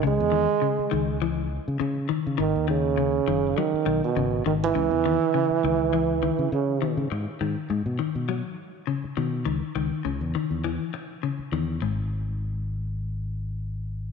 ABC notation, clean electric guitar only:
X:1
M:4/4
L:1/8
Q:"Swing 16ths" 1/4=102
K:C#dor
V:1 name="Clean electric guitar" clef=bass
C, D, C, D, E, z C, D, | D, D, C, D, F, D, C, D, | C, D, C, D, E, D, z D, | z D, G,, D, F, z C, D, |
D, D, C, D, E, z C, D, | G,, z6 z |]